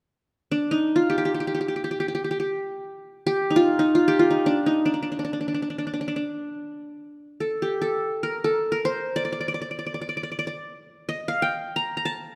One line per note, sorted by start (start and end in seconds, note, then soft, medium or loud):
0.52 0.77 D4 medium
0.71 2.15 D#4 medium
0.96 2.30 F4 medium
1.10 1.17 G4 medium
1.18 1.25 G4 medium
1.25 1.34 G4 medium
1.34 1.40 G4 soft
1.40 1.47 G4 soft
1.47 1.54 G4 soft
1.55 1.60 G4 soft
1.61 1.68 G4 soft
1.68 1.76 G4 soft
1.76 1.84 G4 soft
1.84 1.91 G4 medium
1.91 2.00 G4 soft
2.00 2.08 G4 medium
2.08 2.14 G4 soft
2.15 2.24 G4 medium
2.24 2.30 G4 soft
2.31 2.39 G4 soft
2.40 3.26 G4 soft
3.27 4.07 G4 medium
3.50 3.79 D#4 medium
3.56 3.94 F4 medium
3.79 4.30 D#4 medium
3.95 4.19 F4 medium
4.08 5.33 G4 medium
4.19 5.54 F4 medium
4.30 4.52 D#4 medium
4.46 4.72 D4 medium
4.66 4.91 D#4 medium
4.86 4.93 D4 medium
4.94 5.02 D4 soft
5.03 5.11 D4 soft
5.12 5.19 D4 soft
5.19 5.24 D4 soft
5.25 5.33 D4 soft
5.33 5.40 D4 soft
5.41 5.48 D4 soft
5.48 5.54 D4 soft
5.54 5.62 D4 soft
5.62 5.70 D4 soft
5.70 5.78 D4 soft
5.78 5.86 D4 soft
5.87 5.93 D4 soft
5.94 6.00 D4 soft
6.01 6.07 D4 soft
6.08 6.16 D4 soft
6.16 7.65 D4 soft
7.40 7.81 A4 soft
7.62 8.88 G4 medium
7.82 8.29 A4 medium
8.23 8.50 A#4 medium
8.44 8.78 A4 medium
8.72 9.85 A#4 medium
8.85 9.91 C5 medium
9.16 9.24 D5 medium
9.25 9.32 D5 soft
9.32 9.40 D5 medium
9.41 9.48 D5 soft
9.48 9.54 D5 medium
9.54 9.61 D5 soft
9.62 9.70 D5 soft
9.71 9.78 D5 soft
9.79 9.86 D5 soft
9.86 9.94 D5 soft
9.94 10.01 D5 soft
10.01 10.08 D5 soft
10.09 10.16 D5 soft
10.17 10.23 D5 soft
10.23 10.31 D5 soft
10.32 10.38 D5 soft
10.39 10.47 D5 medium
10.47 11.15 D5 medium
11.09 12.04 D#5 medium
11.28 12.17 F5 medium
11.42 12.25 G5 medium
11.76 11.97 A#5 medium
11.97 12.11 A#5 medium
12.05 12.35 A5 medium